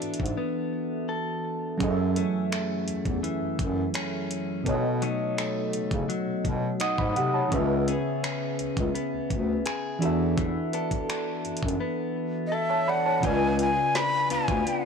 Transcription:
Already playing: E3 B3 D4 F#4 A4 E5
0.02 G#2, closed hi-hat
0.14 closed hi-hat
0.20 G#2, kick
0.26 closed hi-hat
0.37 B3
1.09 A4
1.78 F#2 F#3 C#4 G#4, kick, closed hi-hat
1.82 A4 D#5
1.90 E5
2.16 E3 A3 C#4, closed hi-hat
2.52 A3, finger snap, closed hi-hat
2.88 E2, closed hi-hat
3.05 E2, kick, closed hi-hat
3.23 E3, closed hi-hat
3.41 F#2
3.59 F#2, kick, closed hi-hat
3.94 C#4, finger snap, closed hi-hat
4.31 closed hi-hat
4.63 B2 B3 A4, kick, closed hi-hat
4.68 C#5 D#5
5.02 F#3 A3 D#4, closed hi-hat
5.37 A3, finger snap, closed hi-hat
5.73 C#3, closed hi-hat
5.91 C#3, kick, closed hi-hat
6.09 F#3, closed hi-hat
6.27 B2
6.45 B2, kick, closed hi-hat
6.80 D#4 D#5 F#5 D#6, finger snap, closed hi-hat
6.98 G#2 D#5 B5, kick
7.16 C3 F#5, closed hi-hat
7.34 C#5 A5
7.49 C#2 C#3 C#4 G#4, kick, closed hi-hat
7.54 B4 E5
7.88 B3 C#4 G#4, closed hi-hat
8.23 C#4, finger snap, closed hi-hat
8.59 C#2, closed hi-hat
8.77 C#2, kick, closed hi-hat
8.95 B3, closed hi-hat
9.13 D2
9.30 D2, kick, closed hi-hat
9.66 G#4, finger snap, closed hi-hat
9.99 E2 E3 D4 F#4, closed hi-hat
10.04 A4 E5
10.38 E3, kick, closed hi-hat
10.73 B3 D4 A4, closed hi-hat
10.91 kick, closed hi-hat
11.09 D4, finger snap, closed hi-hat
11.45 F#2, closed hi-hat
11.57 closed hi-hat
11.63 F#2, kick
11.68 closed hi-hat
11.80 B3
12.47 D#5
12.52 A4 E5
12.70 C#5 A5
12.88 D5 F#5 B5
13.06 C#5 A5
13.20 C#2 C#3 C#4 F4, kick, closed hi-hat
13.25 B4 D5 G#5
13.59 G#5, closed hi-hat
13.95 D4 B5, snare, closed hi-hat
14.30 D2 B3 D4 F4 G#5, closed hi-hat
14.48 D2, kick, closed hi-hat
14.66 B3, closed hi-hat

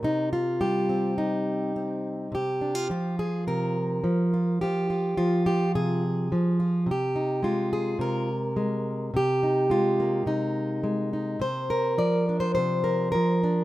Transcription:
0.03 C3 D#4
0.33 F4
0.61 G3 G4
0.89 C4
1.18 D#4
1.76 C4
2.32 C3 G4
2.61 D4
2.75 F4
2.90 F3 F4
3.19 G#4
3.47 C3 A#4
4.04 F3
4.34 F4
4.61 F3 F4 G4
4.90 F4
5.17 F3 F4
5.46 G4
5.75 C3 G#4
6.32 F3
6.60 F4
6.86 C3
6.91 G4
7.16 D#4
7.42 G#3 F4
7.73 G#4
7.99 C3 A#4
8.56 G#3
9.14 C3 G4
9.43 D#4
9.70 G#3 F4
10.00 A#3
10.26 C3 D#4
10.84 G#3
11.13 D#4
11.40 C3 C5
11.70 A#4
11.98 F3 D5
12.29 D4
12.40 C5
12.55 C3 C5
12.84 A#4
13.12 F3 A#4
13.43 D4

